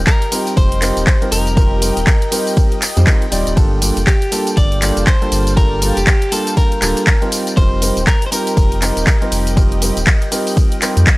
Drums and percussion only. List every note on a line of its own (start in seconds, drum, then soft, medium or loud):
0.07 kick loud
0.07 clap loud
0.07 ride medium
0.07 tambourine soft
0.22 closed hi-hat medium
0.32 open hi-hat loud
0.32 ride medium
0.32 tambourine medium
0.47 closed hi-hat medium
0.47 tambourine soft
0.57 kick loud
0.57 ride medium
0.57 tambourine soft
0.72 closed hi-hat medium
0.82 clap medium
0.82 open hi-hat loud
0.82 ride medium
0.82 tambourine medium
0.97 closed hi-hat medium
0.97 tambourine soft
1.07 kick loud
1.07 clap loud
1.07 ride medium
1.07 tambourine soft
1.22 closed hi-hat soft
1.32 open hi-hat loud
1.32 ride medium
1.32 tambourine medium
1.47 closed hi-hat medium
1.47 tambourine soft
1.57 kick loud
1.57 ride medium
1.57 tambourine soft
1.82 open hi-hat loud
1.82 ride medium
1.82 tambourine medium
1.97 closed hi-hat medium
1.97 tambourine soft
2.07 kick loud
2.07 clap loud
2.07 ride medium
2.07 tambourine soft
2.22 closed hi-hat medium
2.32 open hi-hat loud
2.32 ride medium
2.32 tambourine medium
2.47 open hi-hat medium
2.47 tambourine soft
2.57 kick loud
2.57 ride medium
2.57 tambourine soft
2.72 closed hi-hat medium
2.82 clap medium
2.82 open hi-hat loud
2.82 ride medium
2.82 tambourine medium
2.97 closed hi-hat medium
2.97 tambourine soft
3.07 kick loud
3.07 clap loud
3.07 ride medium
3.07 tambourine soft
3.22 closed hi-hat soft
3.32 open hi-hat loud
3.32 ride medium
3.32 tambourine medium
3.47 closed hi-hat medium
3.47 tambourine soft
3.57 kick loud
3.57 ride medium
3.57 tambourine soft
3.82 open hi-hat loud
3.82 ride medium
3.82 tambourine medium
3.97 closed hi-hat medium
3.97 tambourine soft
4.07 kick loud
4.07 clap loud
4.07 ride medium
4.07 tambourine soft
4.22 closed hi-hat medium
4.32 open hi-hat loud
4.32 ride medium
4.32 tambourine medium
4.47 closed hi-hat medium
4.47 tambourine soft
4.57 kick loud
4.57 ride medium
4.57 tambourine soft
4.72 closed hi-hat medium
4.82 clap medium
4.82 open hi-hat loud
4.82 ride medium
4.82 tambourine medium
4.97 closed hi-hat medium
4.97 tambourine soft
5.07 kick loud
5.07 clap loud
5.07 ride medium
5.07 tambourine soft
5.22 closed hi-hat soft
5.32 open hi-hat loud
5.32 ride medium
5.32 tambourine medium
5.47 closed hi-hat medium
5.47 tambourine soft
5.57 kick loud
5.57 ride medium
5.57 tambourine soft
5.82 open hi-hat loud
5.82 ride medium
5.82 tambourine medium
5.97 closed hi-hat medium
5.97 tambourine medium
6.07 kick loud
6.07 clap loud
6.07 ride medium
6.07 tambourine soft
6.22 closed hi-hat medium
6.32 open hi-hat loud
6.32 ride medium
6.32 tambourine medium
6.47 closed hi-hat medium
6.47 tambourine soft
6.57 kick loud
6.57 ride medium
6.57 tambourine soft
6.72 closed hi-hat medium
6.82 clap medium
6.82 open hi-hat loud
6.82 ride medium
6.82 tambourine medium
6.97 closed hi-hat medium
6.97 tambourine soft
7.07 kick loud
7.07 clap loud
7.07 ride medium
7.07 tambourine soft
7.22 closed hi-hat soft
7.32 open hi-hat loud
7.32 ride medium
7.32 tambourine medium
7.47 closed hi-hat medium
7.47 tambourine soft
7.57 kick loud
7.57 ride medium
7.57 tambourine soft
7.82 open hi-hat loud
7.82 ride medium
7.82 tambourine medium
7.97 closed hi-hat medium
7.97 tambourine soft
8.07 kick loud
8.07 clap loud
8.07 ride medium
8.07 tambourine soft
8.22 closed hi-hat medium
8.32 open hi-hat loud
8.32 ride medium
8.32 tambourine medium
8.47 closed hi-hat medium
8.47 tambourine soft
8.57 kick loud
8.57 ride medium
8.57 tambourine soft
8.72 closed hi-hat medium
8.82 clap medium
8.82 open hi-hat loud
8.82 ride medium
8.82 tambourine medium
8.97 closed hi-hat medium
8.97 tambourine soft
9.07 kick loud
9.07 clap loud
9.07 ride medium
9.07 tambourine soft
9.22 closed hi-hat soft
9.32 open hi-hat loud
9.32 ride medium
9.32 tambourine medium
9.47 closed hi-hat medium
9.47 tambourine soft
9.57 kick loud
9.57 ride medium
9.57 tambourine soft
9.72 closed hi-hat soft
9.82 open hi-hat loud
9.82 ride medium
9.82 tambourine medium
9.97 closed hi-hat medium
9.97 tambourine soft
10.07 kick loud
10.07 clap loud
10.07 ride medium
10.07 tambourine soft
10.22 closed hi-hat medium
10.32 open hi-hat loud
10.32 ride medium
10.32 tambourine medium
10.47 open hi-hat medium
10.47 tambourine soft
10.57 kick loud
10.57 ride medium
10.57 tambourine soft
10.72 closed hi-hat medium
10.82 clap medium
10.82 open hi-hat loud
10.82 ride medium
10.82 tambourine medium
10.97 closed hi-hat medium
10.97 tambourine soft
11.07 kick loud
11.07 clap loud
11.07 ride medium
11.07 tambourine soft